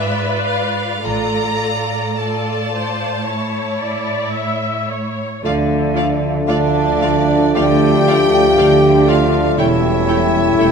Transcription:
Already playing: G#2 F4 B4 D5 E5
0.47 F5
1.05 A1 A2 F4 A4 D5 A#5
2.17 F4 A4 D5 A5
2.73 C5
3.25 E4 C#5
3.81 D5
4.34 E5
4.90 C#5
5.43 D2 D3 F3 A3 D4 F4 D5 F5
5.94 A3 F4 D5 F5
6.47 D2 D3 A3 D4 F4 D5 F5
7.01 A3 F4 D5 F5
7.55 D2 D3 A3 F4 G4 D5 F5 G5
8.07 A3 F4 D5 F5
8.56 D2 D3 A3 F4 D5 F5
9.06 A3 F4 D5 F5
9.11 F5
9.58 E1 E2 G3 A3 C#4 E4 C#5 E5 G5
10.08 A3 E4 C#5 G5
10.58 E1 E2 A3 E4 C#5 G5

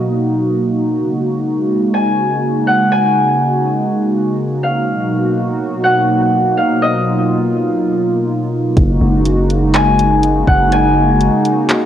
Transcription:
Already playing: B2 F#3 A#3 D#4 F#4 D#5 F5
0.96 C#3 G#3
1.94 G#5
2.67 F#5
2.92 G#5
4.63 F5
4.87 B2 F#3 A#3 D#4 F#4
5.84 F#5
6.57 F5
6.82 F4 D#5
8.77 F#1 C#3 G#3 A#3 D#4 F#4, kick, closed hi-hat
9.01 F#1
9.26 closed hi-hat
9.50 closed hi-hat
9.74 G#5, clap, closed hi-hat
9.99 closed hi-hat
10.23 closed hi-hat
10.47 F#1 F#5, kick
10.72 G#5, closed hi-hat
11.21 closed hi-hat
11.45 closed hi-hat
11.69 clap, closed hi-hat

